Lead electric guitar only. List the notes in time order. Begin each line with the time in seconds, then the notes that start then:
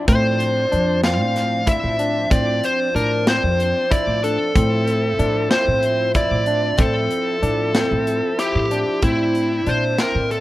0.09 C5
1.04 F5
1.69 E5
2.31 D5
2.64 C5
2.96 A#4
3.28 C5
3.91 D5
4.24 A4
5.51 C5
6.16 D5
6.80 A4
8.39 G4
9.04 E4
9.69 C5
10.00 A#4
10.31 A4